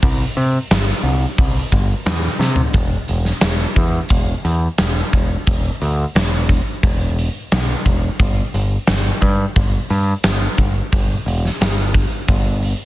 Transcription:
0.02 C2, kick, open hi-hat
0.37 C3
0.71 G1, snare, open hi-hat
1.03 C2
1.38 C2, kick, open hi-hat
1.72 G1, kick
2.06 E2, snare, open hi-hat
2.39 C3, snare
2.56 floor tom
2.73 E1, kick, open hi-hat
3.08 E1, open hi-hat
3.25 snare
3.41 E1, snare, open hi-hat
3.76 E2, kick, open hi-hat
4.09 E1, kick, open hi-hat
4.45 E2, open hi-hat
4.78 E1, snare, open hi-hat
5.13 E1, kick, open hi-hat
5.47 E1, kick, open hi-hat
5.82 D2, open hi-hat
6.15 E1, snare, open hi-hat
6.49 kick, open hi-hat
6.83 E1, kick, open hi-hat
7.19 open hi-hat
7.52 B1, snare, open hi-hat
7.85 E1, kick, open hi-hat
8.19 G1, kick, open hi-hat
8.54 G1, open hi-hat
8.87 G1, snare, open hi-hat
9.22 G2, kick, open hi-hat
9.56 G1, kick, open hi-hat
9.90 G2, open hi-hat
10.24 G1, snare, open hi-hat
10.58 G1, kick, open hi-hat
10.92 G1, kick, open hi-hat
11.26 E1, open hi-hat
11.45 snare
11.61 G1, snare, open hi-hat
11.94 kick, open hi-hat
12.28 G1, kick, open hi-hat
12.63 open hi-hat

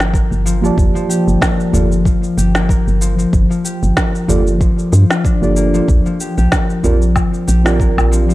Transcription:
Already playing: G1 F3 G4 A#4
0.00 A#3, snare, shaker
0.13 A#4, kick, shaker
0.31 G1, shaker
0.46 F3, shaker
0.61 F3 A#3 F4 G4 A5, shaker
0.65 D5
0.78 G1, kick, udu, shaker
0.95 F3, shaker
1.09 G4, shaker
1.28 G1, shaker
1.41 A#4, kick, snare, shaker
1.60 shaker
1.72 G1 F3 A#3 F4 G4 A4 D5, udu, shaker
1.92 shaker
2.05 F3, kick, shaker
2.24 shaker
2.37 G1 G4, shaker
2.55 A#3, snare, shaker
2.69 A#4, kick, shaker
2.87 G1, shaker
3.01 F3, shaker
3.18 F3, shaker
3.33 G1, kick, shaker
3.50 F3, shaker
3.65 G4, shaker
3.83 G1, shaker
3.96 A#4, kick, snare, shaker
4.15 shaker
4.28 G1 F3 A#3 F4 G4 A4 D5, udu, shaker
4.47 shaker
4.60 F3, kick, shaker
4.79 shaker
4.92 G2 F3, shaker
5.10 F4, snare, shaker
5.24 D4, kick, shaker
5.41 G1 A#3 F4 G4 A4 D5, shaker
5.56 A#3, shaker
5.74 F3, shaker
5.88 A#1, kick, udu, shaker
6.06 F3, shaker
6.20 G4, shaker
6.38 A#1 G4, shaker
6.52 A#4, kick, snare, shaker
6.70 shaker
6.83 A#1 F3 C4 F4 G4 A#4 D5, udu, shaker
7.02 shaker
7.16 F3, kick, low woodblock, shaker
7.34 shaker
7.47 A#1 G4, shaker
7.64 A#3 C4 F4 G4 A#4, snare, shaker
7.68 D5
7.79 A#4, kick, shaker
7.98 A#1, low woodblock, shaker
8.11 F3, shaker
8.29 F3, shaker

